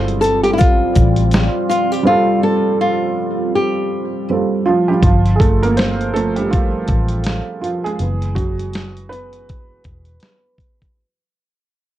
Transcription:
0.00 0.92 G1 loud
0.00 2.01 G3 medium
0.00 4.99 G3 medium
0.00 2.02 C4 medium
0.00 4.99 C4 medium
0.00 2.03 F4 medium
0.00 4.99 F4 medium
0.00 2.04 A4 medium
0.00 0.21 C5 loud
0.08 closed hi-hat soft
0.21 0.43 A4 medium
0.21 closed hi-hat medium
0.21 shaker medium
0.43 0.53 G4 medium
0.43 closed hi-hat soft
0.53 0.59 E4 medium
0.58 1.68 F4 loud
0.58 kick medium
0.58 closed hi-hat medium
0.58 shaker medium
0.95 1.47 A1 medium
0.95 kick medium
0.95 closed hi-hat medium
0.95 shaker medium
1.16 closed hi-hat medium
1.31 snare loud
1.31 closed hi-hat medium
1.31 shaker medium
1.69 1.92 F4 medium
1.69 closed hi-hat medium
1.69 shaker medium
1.92 2.06 G4 medium
1.92 closed hi-hat soft
2.03 4.23 G3 medium
2.03 4.24 C4 medium
2.03 2.43 F4 loud
2.07 4.25 F4 medium
2.07 4.26 A4 medium
2.43 2.80 A4 medium
2.81 3.55 F4 medium
3.55 4.62 G4 medium
4.30 4.88 G3 soft
4.30 5.04 C4 soft
4.30 4.64 F4 soft
4.30 5.05 A4 medium
4.66 4.88 F3 medium
4.66 4.89 F4 medium
4.88 5.03 G3 medium
4.88 5.03 G4 medium
5.03 6.84 G1 medium
5.03 5.35 F3 medium
5.03 5.37 F4 medium
5.03 kick medium
5.03 closed hi-hat medium
5.25 closed hi-hat soft
5.36 5.40 G#4 medium
5.40 5.62 A3 medium
5.40 5.63 A4 medium
5.40 kick medium
5.40 closed hi-hat medium
5.63 5.77 A#3 medium
5.63 5.78 A#4 medium
5.63 closed hi-hat soft
5.77 6.12 C4 medium
5.77 6.15 C5 medium
5.77 snare loud
5.77 closed hi-hat medium
6.01 closed hi-hat soft
6.14 6.51 F3 medium
6.14 6.36 A3 medium
6.14 6.67 C4 medium
6.14 6.37 A4 loud
6.14 closed hi-hat medium
6.36 6.51 G3 medium
6.36 6.51 G4 medium
6.36 closed hi-hat soft
6.51 7.59 F3 medium
6.51 7.60 F4 medium
6.51 kick medium
6.51 closed hi-hat medium
6.88 7.40 A1 medium
6.88 kick medium
6.88 closed hi-hat medium
7.09 closed hi-hat soft
7.24 snare medium
7.24 closed hi-hat medium
7.61 7.84 F3 medium
7.61 7.85 F4 medium
7.61 closed hi-hat medium
7.84 7.98 G#3 medium
7.84 8.38 G#4 medium
7.84 closed hi-hat soft
7.99 9.81 F#1 medium
7.99 8.52 E3 soft
7.99 8.52 G#3 soft
7.99 8.52 B3 medium
7.99 closed hi-hat medium
8.22 closed hi-hat soft
8.35 9.07 F#3 medium
8.35 9.06 F#4 medium
8.35 kick medium
8.35 closed hi-hat medium
8.59 closed hi-hat soft
8.73 snare medium
8.73 closed hi-hat medium
8.97 closed hi-hat soft
9.09 10.55 B3 medium
9.09 10.54 B4 medium
9.09 closed hi-hat medium
9.33 closed hi-hat soft
9.49 kick medium
9.49 closed hi-hat medium
9.84 10.17 E1 medium
9.84 kick medium
9.84 closed hi-hat medium
10.05 closed hi-hat soft
10.20 snare medium
10.20 closed hi-hat medium
10.58 kick medium
10.58 closed hi-hat medium
10.82 kick medium
10.82 closed hi-hat soft

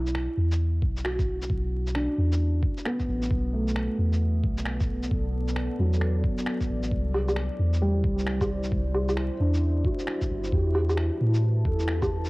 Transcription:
0.00 0.28 B1 loud
0.00 1.21 E4 medium
0.06 shaker medium
0.15 finger snap medium
0.37 0.84 E2 medium
0.52 shaker medium
0.82 1.49 B1 medium
0.82 kick medium
0.97 shaker medium
1.04 2.56 F#4 medium
1.04 finger snap loud
1.19 kick loud
1.19 shaker soft
1.42 shaker medium
1.50 2.08 B1 loud
1.50 kick loud
1.87 shaker medium
1.95 3.47 D4 medium
1.95 finger snap loud
2.18 2.62 E2 medium
2.32 shaker medium
2.63 kick loud
2.77 shaker medium
2.85 4.37 B3 medium
2.85 finger snap loud
3.00 kick medium
3.00 shaker soft
3.08 3.29 A1 medium
3.22 shaker medium
3.30 3.88 B1 loud
3.30 6.88 B3 medium
3.30 6.88 A4 medium
3.30 10.48 D5 medium
3.30 kick loud
3.53 5.05 A3 medium
3.68 shaker medium
3.76 finger snap loud
3.98 4.45 E2 medium
4.13 shaker medium
4.44 5.10 B1 medium
4.44 kick loud
4.58 shaker medium
4.65 finger snap loud
4.80 kick loud
4.80 shaker soft
5.03 shaker medium
5.11 5.69 B1 loud
5.11 kick loud
5.48 shaker medium
5.56 finger snap loud
5.79 6.23 E2 medium
5.79 7.10 F#3 soft
5.93 shaker medium
6.01 finger snap medium
6.24 kick loud
6.38 shaker medium
6.46 finger snap loud
6.61 kick medium
6.61 shaker soft
6.69 6.90 A1 medium
6.83 shaker medium
6.91 7.49 C2 loud
6.91 12.30 E4 medium
6.91 10.49 C5 medium
6.91 kick loud
7.14 low woodblock soft
7.28 low woodblock soft
7.28 shaker medium
7.36 finger snap loud
7.59 8.06 E2 medium
7.74 shaker medium
7.82 9.33 G3 medium
8.04 8.71 C2 medium
8.04 kick loud
8.19 shaker soft
8.27 finger snap loud
8.41 kick loud
8.41 low woodblock medium
8.41 shaker soft
8.64 shaker soft
8.72 9.30 C2 loud
8.72 kick loud
8.95 low woodblock soft
9.09 low woodblock soft
9.09 shaker medium
9.17 finger snap loud
9.40 9.84 E2 medium
9.40 10.72 D4 medium
9.54 shaker soft
9.85 10.71 F#4 medium
9.85 kick medium
9.99 shaker soft
10.07 finger snap loud
10.21 kick medium
10.21 shaker soft
10.31 10.52 G1 medium
10.44 shaker medium
10.52 11.10 E2 loud
10.52 12.04 G4 medium
10.52 12.30 B4 medium
10.52 12.30 A5 medium
10.52 kick loud
10.75 low woodblock medium
10.89 low woodblock medium
10.89 shaker medium
10.97 finger snap medium
11.21 11.67 A2 medium
11.34 shaker medium
11.65 12.30 E2 medium
11.65 12.30 A4 medium
11.65 kick medium
11.79 shaker medium
11.88 finger snap loud
12.02 kick medium
12.02 low woodblock medium
12.02 shaker soft
12.25 shaker medium

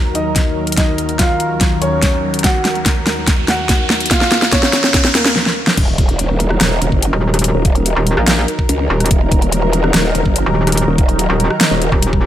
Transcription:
0.00 5.32 D#2 medium
0.00 5.32 D#3 medium
0.00 5.32 F#3 medium
0.00 5.32 A#4 medium
0.00 riser medium
0.15 0.69 D#4 medium
0.15 0.69 D#5 medium
0.15 closed hi-hat medium
0.36 kick loud
0.36 snare medium
0.36 closed hi-hat medium
0.67 closed hi-hat soft
0.72 closed hi-hat medium
0.77 1.09 D#4 medium
0.77 1.09 D#5 medium
0.77 kick medium
0.77 snare medium
0.77 closed hi-hat medium
0.98 closed hi-hat medium
1.09 closed hi-hat soft
1.19 1.73 F4 medium
1.19 1.73 F5 medium
1.19 kick medium
1.19 snare medium
1.19 closed hi-hat medium
1.40 closed hi-hat medium
1.61 kick loud
1.61 snare medium
1.61 closed hi-hat medium
1.82 2.36 C#4 medium
1.82 2.36 C#5 medium
1.82 closed hi-hat medium
2.02 kick loud
2.02 snare medium
2.02 closed hi-hat medium
2.34 closed hi-hat soft
2.39 closed hi-hat medium
2.44 2.75 F#4 medium
2.44 2.75 F#5 loud
2.44 kick loud
2.44 snare medium
2.44 closed hi-hat medium
2.65 snare medium
2.65 closed hi-hat medium
2.75 closed hi-hat soft
2.86 kick loud
2.86 snare medium
2.86 closed hi-hat medium
3.07 snare medium
3.07 closed hi-hat medium
3.27 kick loud
3.27 snare medium
3.27 closed hi-hat medium
3.48 4.03 F#4 medium
3.48 4.03 F#5 medium
3.48 snare medium
3.48 closed hi-hat medium
3.69 kick loud
3.69 snare medium
3.69 closed hi-hat medium
3.90 snare medium
4.00 closed hi-hat medium
4.06 closed hi-hat medium
4.11 4.42 F4 medium
4.11 4.42 F5 medium
4.11 kick loud
4.11 snare medium
4.11 closed hi-hat medium
4.21 snare medium
4.32 snare medium
4.32 closed hi-hat soft
4.42 snare medium
4.42 closed hi-hat soft
4.52 5.07 C#4 medium
4.52 5.07 C#5 medium
4.52 kick medium
4.52 snare medium
4.52 closed hi-hat medium
4.63 snare medium
4.73 snare loud
4.73 closed hi-hat medium
4.84 snare medium
4.94 kick loud
4.94 snare loud
4.94 closed hi-hat medium
5.05 snare medium
5.15 5.36 A#3 medium
5.15 5.36 A#4 loud
5.15 snare loud
5.15 closed hi-hat medium
5.25 snare loud
5.36 snare medium
5.46 snare medium
5.67 snare medium
5.77 6.59 D#1 medium
5.77 12.26 D#3 medium
5.77 12.26 F#3 medium
5.77 12.26 D#4 medium
5.77 12.26 A#4 medium
5.77 kick loud
5.77 closed hi-hat medium
5.77 crash loud
5.77 impact medium
5.98 kick loud
5.98 closed hi-hat medium
6.09 closed hi-hat soft
6.19 closed hi-hat medium
6.40 closed hi-hat medium
6.50 cross-stick medium
6.61 6.80 D#1 loud
6.61 cross-stick medium
6.61 snare loud
6.61 closed hi-hat medium
6.82 6.90 D#1 loud
6.82 closed hi-hat medium
6.92 7.11 F#1 medium
6.92 kick medium
7.02 closed hi-hat medium
7.13 7.53 D#1 loud
7.34 cross-stick medium
7.34 closed hi-hat medium
7.39 closed hi-hat medium
7.44 closed hi-hat medium
7.55 7.95 D#1 loud
7.65 kick loud
7.65 closed hi-hat medium
7.75 closed hi-hat soft
7.86 closed hi-hat medium
7.96 8.15 D#1 loud
8.07 closed hi-hat medium
8.17 8.47 A#1 loud
8.17 cross-stick medium
8.27 snare loud
8.27 closed hi-hat medium
8.48 closed hi-hat medium
8.59 kick medium
8.69 8.88 C#2 loud
8.69 closed hi-hat medium
8.90 9.09 D#1 loud
9.00 cross-stick medium
9.00 closed hi-hat medium
9.06 closed hi-hat medium
9.11 9.92 D#1 loud
9.11 kick loud
9.11 closed hi-hat medium
9.32 kick loud
9.32 closed hi-hat medium
9.42 closed hi-hat soft
9.52 closed hi-hat medium
9.73 closed hi-hat medium
9.84 cross-stick medium
9.94 10.13 D#1 loud
9.94 cross-stick medium
9.94 snare loud
9.94 closed hi-hat medium
10.15 10.24 D#1 loud
10.15 closed hi-hat medium
10.25 10.45 F#1 medium
10.25 kick medium
10.36 closed hi-hat medium
10.46 10.86 D#1 loud
10.67 cross-stick medium
10.67 closed hi-hat medium
10.72 closed hi-hat medium
10.77 closed hi-hat medium
10.88 11.28 D#1 loud
10.98 kick loud
10.98 closed hi-hat medium
11.09 closed hi-hat soft
11.19 closed hi-hat medium
11.30 11.49 D#1 loud
11.40 closed hi-hat medium
11.50 cross-stick medium
11.61 snare loud
11.61 closed hi-hat medium
11.71 11.90 D#1 loud
11.82 closed hi-hat medium
11.92 12.26 D#1 loud
11.92 kick medium
12.02 closed hi-hat medium
12.13 kick medium

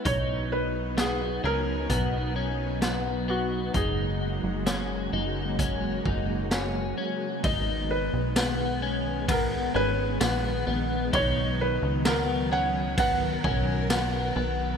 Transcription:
0.05 1.40 B1 loud
0.05 7.40 F#3 medium
0.05 3.71 B3 medium
0.05 0.97 D#4 medium
0.05 3.71 D#4 medium
0.05 0.53 C#5 medium
0.05 kick loud
0.05 closed hi-hat medium
0.52 0.95 B4 medium
0.98 1.43 B3 medium
0.98 1.46 G#4 medium
0.98 snare medium
0.98 closed hi-hat medium
1.44 1.88 C#2 medium
1.44 1.90 C#4 medium
1.44 3.35 A#4 loud
1.90 3.71 B1 loud
1.90 2.36 B3 medium
1.90 kick medium
1.90 closed hi-hat medium
2.36 2.82 C#4 medium
2.82 3.27 B3 medium
2.82 snare medium
2.82 closed hi-hat medium
3.28 3.74 B3 medium
3.28 3.72 F#4 medium
3.74 4.40 F#1 loud
3.74 7.40 C#3 medium
3.74 7.40 G#3 medium
3.74 7.40 A#3 medium
3.74 4.66 D#4 medium
3.74 7.40 F#4 medium
3.74 6.48 G#4 medium
3.74 kick loud
3.74 closed hi-hat medium
4.43 5.09 F#1 medium
4.66 5.13 C#4 medium
4.66 snare loud
4.66 closed hi-hat medium
5.13 6.01 F#1 medium
5.13 5.59 D#4 medium
5.59 6.05 C#4 medium
5.59 kick medium
5.59 closed hi-hat medium
6.05 6.94 F#1 medium
6.05 6.51 D#4 medium
6.05 kick medium
6.51 6.96 C#4 medium
6.51 snare loud
6.51 closed hi-hat medium
6.98 7.44 C#4 medium
7.44 8.10 G#1 loud
7.44 14.77 D#3 medium
7.44 11.09 G#3 medium
7.44 12.94 B3 medium
7.44 8.36 D#4 medium
7.44 7.92 D#5 medium
7.44 kick loud
7.44 ride medium
7.91 9.33 B4 medium
8.13 9.71 B1 medium
8.36 8.82 B3 medium
8.36 snare medium
8.36 ride medium
8.36 tambourine medium
8.82 9.28 C#4 medium
9.28 9.74 B3 medium
9.28 9.77 A#4 medium
9.28 kick loud
9.28 ride medium
9.74 10.19 G#1 loud
9.74 10.20 C#4 medium
9.74 11.18 B4 loud
10.21 10.65 A#1 medium
10.21 10.66 B3 medium
10.21 snare loud
10.21 ride medium
10.21 tambourine medium
10.67 11.11 A#1 medium
10.67 11.13 B3 medium
11.13 11.79 B1 loud
11.13 14.77 F#3 medium
11.13 12.05 D#4 medium
11.13 11.57 C#5 loud
11.13 kick loud
11.13 ride medium
11.61 12.03 B4 medium
11.82 13.40 C#2 medium
12.05 12.51 B3 medium
12.05 12.53 A#4 medium
12.05 snare loud
12.05 ride medium
12.05 tambourine medium
12.52 12.97 C#4 medium
12.52 12.98 F#5 loud
12.98 13.44 B3 medium
12.98 14.77 A#4 medium
12.98 14.33 F#5 medium
12.98 kick loud
12.98 ride medium
13.44 14.32 B1 loud
13.44 13.90 C#4 medium
13.44 kick loud
13.90 14.35 B3 medium
13.90 snare loud
13.90 ride medium
13.90 tambourine medium
14.36 14.77 B1 loud
14.36 14.77 B3 medium

